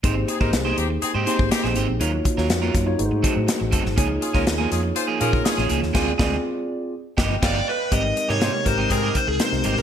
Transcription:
<<
  \new Staff \with { instrumentName = "Lead electric guitar" } { \time 4/4 \key aes \major \tempo 4 = 122 r1 | r1 | r1 | r2. d''8 b'8 |
ees''8. des''8. c''8 bes'8 c''16 aes'16 c''8 c''16 bes'16 | }
  \new Staff \with { instrumentName = "Horn section" } { \time 4/4 \key aes \major r8 <c' ees' aes'>16 <ees' g' bes'>16 r16 <c' ees' aes'>16 <c' ees' g'>16 r16 <c' ees' aes'>16 r16 <c' aes' c''>8 <c' ees' g'>8 r8 | r1 | r8 <des' f' aes'>16 <des' f' bes'>16 r16 <des' f' bes'>16 <des' f' aes'>16 r16 <f' aes' c''>16 r16 <des' f' bes'>8 <des' f' aes'>8 r8 | r1 |
r8. <c' ees' aes'>16 <c' aes' c''>16 r16 <ees' g' bes'>8 <c' ees' aes'>8 r4. | }
  \new Staff \with { instrumentName = "Tine electric piano" } { \time 4/4 \key aes \major <bes ees' g' aes' c''>8. <bes ees' g' aes' c''>4. r16 <bes ees' g' aes' c''>4~ <bes ees' g' aes' c''>16 r16 | <bes ees' f' ges' des''>8. <bes ees' f' ges' des''>8. r16 <bes ees' f' ges' des''>16 <a ees' ges' aes' ces'' c''>4.~ <a ees' ges' aes' ces'' c''>16 r16 | <bes ees' f' aes' des''>8. <bes ees' f' aes' des''>4. r16 <bes ees' f' aes' des''>4~ <bes ees' f' aes' des''>16 r16 | <c' f' aes' d''>8 <c' f' aes' d''>8 r4. <ees'' g''>8 <f'' g''>8 r8 |
<aes c' ees' g' bes'>8. <c aes ees' g' bes'>8. <aes c' ees' g' bes'>4~ <aes c' ees' g' bes'>16 r16 <aes c' ees' g' bes'>16 <aes c' ees' g' bes'>8. | }
  \new Staff \with { instrumentName = "Clean electric guitar" } { \time 4/4 \key aes \major <c' ees' g' c''>16 r8 <c' ees' g' c''>16 r16 <c' ees' g' c''>16 r8. <c' ees' g' c''>16 <c' ees' g' c''>16 r8 <c' ees' g' c''>16 <c' ees' g' c''>16 r16 | <ges des' f' bes'>16 r8 <ges des' f' bes'>16 r16 <ges des' f' bes'>16 r4 <ges c' ees' a'>16 r8. <ges c' ees' a'>16 r16 | <f bes des' aes'>16 r8 <f bes des' aes'>16 r16 <f bes des' aes'>16 r8. <f bes des' aes'>16 <f bes des' aes'>16 r8 <f bes des' aes'>16 <f bes des' aes'>16 r16 | <aes c' f' aes'>8 <aes c' f' aes'>8 r4. <f b ees' g'>8 <f b ees' g'>8 r8 |
<g c' ees' g'>16 r8 <g c' ees' g'>16 <g c' ees' g'>16 r8 <g c' ees' g'>16 r16 <g c' ees' g'>16 r4 <g c' ees' g'>16 r16 | }
  \new Staff \with { instrumentName = "Fretless electric bass" } { \clef bass \time 4/4 \key aes \major aes,,8 r16 aes,,16 c,8 ees,8 r16 aes,16 r16 aes,,16 r16 bes,,16 aes,,16 bes,,16 | ees,8 r16 ees,16 f,8 ges,8 aes,,16 aes,16 r16 a,16 r16 a,,16 ges,,16 aes,,16 | des,8 r16 des,16 ees,8 f,8 r8 bes,8 r16 bes,,16 des,16 ees,16 | d,8 d,8 r4. g,,8 g,,8 r8 |
aes,,8 r16 aes,8 r16 aes,,8 aes,8 r16 des,16 r16 c,16 aes,,16 bes,,16 | }
  \new DrumStaff \with { instrumentName = "Drums" } \drummode { \time 4/4 <hh bd>8 hh16 bd16 <hh sn>8 hh8 hh8 hh16 bd16 <hh sn>16 sn16 hh8 | hh8 <hh bd>16 sn16 <hh sn>8 <hh bd sn>8 hh8 <hh bd>8 <hh sn>8 <hh bd>16 sn16 | <hh bd>8 hh16 <bd sn>16 <hh sn>8 <hh sn>8 hh8 hh16 bd16 <hh sn>16 sn16 hh16 sn16 | <cymc bd sn>8 <bd sn>8 r4 r8 <bd sn>8 <cymc bd sn>4 |
<hh bd>8 hh16 sn16 <hh sn>8 <hh bd>8 <hh bd>8 <hh bd>8 <hh sn>16 sn16 hh16 sn16 | }
>>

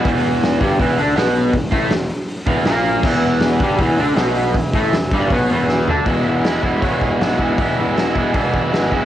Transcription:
<<
  \new Staff \with { instrumentName = "Transistor combo organ" } { \time 4/4 \key e \mixolydian \tempo 4 = 159 r1 | r1 | <gis' b' e''>4 <gis' b' d''>4 <gis' b' e''>4 <gis' b' e''>4 | <gis' b' e''>4 <gis' b' e''>4 <gis' b' cis''>4 <gis' b' e''>4 |
<gis' b' e''>4 <gis' b' e''>4 <gis' b' cis''>4 <gis' b' fis''>4 | <gis' b' d''>4 <gis' b' e''>4 <gis' b' d''>4 <gis' b' e''>4 | }
  \new Staff \with { instrumentName = "Overdriven electric guitar" } { \clef bass \time 4/4 \key e \mixolydian <e, e>4. <g, g>8 <e, e>8 <d d'>8 <b, b>4 | e,8 <a, a>8 e,8 r4 <e, e>8 <ais, ais>4 | <e, e>4. <g, g>8 <e, e>8 <d d'>8 <b, b>4 | e,8 <a, a>8 e,8 <g, g>8 <b, b>8 <e, e>4 <d d'>8 |
<e, b, e gis b e'>8 <e gis b e'>8 <e gis b e'>8 <e gis b e'>8 <e, b, e gis b e'>4 <e gis b e'>8 <e gis b e'>8 | <e, b, e gis b e'>8 <e gis b e'>8 <e gis b e'>8 <e gis b e'>8 <e, b, e gis b e'>4 <e gis b e'>8 <e gis b e'>8 | }
  \new Staff \with { instrumentName = "Picked electric bass" } { \clef bass \time 4/4 \key e \mixolydian e,,4. g,,8 e,,8 d,8 b,,4 | e,,8 a,,8 e,,8 r4 e,,8 ais,,4 | e,,4. g,,8 e,,8 d,8 b,,4 | e,,8 a,,8 e,,8 g,,8 b,,8 e,,4 d,8 |
e,,8 e,,8 e,,4 e,8 e,,8 b,,8 e,,8 | e,,8 e,,8 e,,4 e,,8 e,,8 gis,,8 e,,8 | }
  \new DrumStaff \with { instrumentName = "Drums" } \drummode { \time 4/4 <hho bd>8 hho8 <hho sn>8 <hho bd>8 <hho bd>8 hho8 <hho sn>8 hho8 | <hho bd>8 <hho bd>8 <hho sn>8 hho8 hho8 <hho bd>8 <hho sn>8 hho8 | <cymc bd>8 hho8 <hho sn>8 <hho bd>8 <hho bd>8 hho8 <hho sn>8 hho8 | <hho bd>8 <hho bd>8 <hho sn>8 <hho bd>8 <hho bd>8 hho8 sn8 tomfh8 |
<hho bd>4 <hho sn>8 bd8 <hho bd>8 bd8 <hho sn>16 sn16 bd8 | <hho bd>4 <hho sn>8 bd8 <hho bd>8 bd8 <hho sn>8 bd8 | }
>>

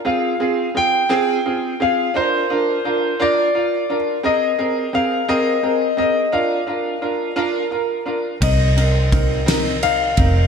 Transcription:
<<
  \new Staff \with { instrumentName = "Grand piano" } { \time 6/8 \key bes \mixolydian \tempo 4. = 57 f''4 g''4. f''8 | c''4. d''4 r8 | ees''4 f''8 ees''4 ees''8 | f''2 r4 |
ees''2 f''4 | }
  \new Staff \with { instrumentName = "Upright piano" } { \time 6/8 \key bes \mixolydian <c' f' aes'>8 <c' f' aes'>8 <c' f' aes'>8 <c' f' aes'>8 <c' f' aes'>8 <c' f' aes'>8 | <d' f' bes'>8 <d' f' bes'>8 <d' f' bes'>8 <d' f' bes'>8 <f' bes'>8 <d' f' bes'>8 | <c' aes' bes'>8 <c' aes' bes'>8 <c' aes' bes'>8 <c' aes' bes'>8 <c' aes' bes'>8 <c' aes' bes'>8 | <d' f' bes'>8 <d' f' bes'>8 <d' f' bes'>8 <d' f' bes'>8 <f' bes'>8 <d' f' bes'>8 |
<c' ees' bes'>8 <c' ees' bes'>8 <c' ees' bes'>8 <c' ees' bes'>8 <ees' bes'>8 <c' ees' bes'>8 | }
  \new Staff \with { instrumentName = "Fingered electric bass" } { \clef bass \time 6/8 \key bes \mixolydian r2. | r2. | r2. | r2. |
c,2~ c,8 f,,8 | }
  \new DrumStaff \with { instrumentName = "Drums" } \drummode { \time 6/8 r4. r4. | r4. r4. | r4. r4. | r4. r4. |
<bd cymr>8 cymr8 <bd cymr>8 <cymr sn>8 cymr8 <bd cymr>8 | }
>>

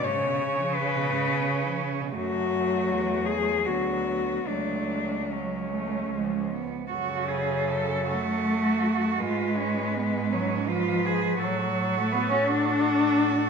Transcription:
<<
  \new Staff \with { instrumentName = "Cello" } { \time 3/4 \key fis \minor \tempo 4 = 81 cis''4 b'4. r8 | fis'4. gis'8 fis'4 | d'4 cis'4. r8 | a'2. |
b'2 b'4 | a'2. | }
  \new Staff \with { instrumentName = "Cello" } { \time 3/4 \key fis \minor cis'2. | a2 b4 | a4 fis8 a8 gis8 b8 | fis'8 gis'8 a'8 fis'4. |
eis'8 cis'8 b8 cis'8 eis'8 gis'8 | fis'2 fis'4 | }
  \new Staff \with { instrumentName = "Cello" } { \clef bass \time 3/4 \key fis \minor gis,16 b,16 cis16 eis16 cis16 b,16 gis,16 b,16 cis16 eis16 cis16 b,16 | fis2 fis4 | fis4 fis4 eis8. r16 | cis4. a4. |
gis4. fis8 eis4 | fis8. a16 b16 cis'16 d'4. | }
  \new Staff \with { instrumentName = "Cello" } { \clef bass \time 3/4 \key fis \minor cis2. | fis,4 e,4 d,4 | cis,2 cis,8 r8 | fis,2. |
gis,2. | a,2. | }
>>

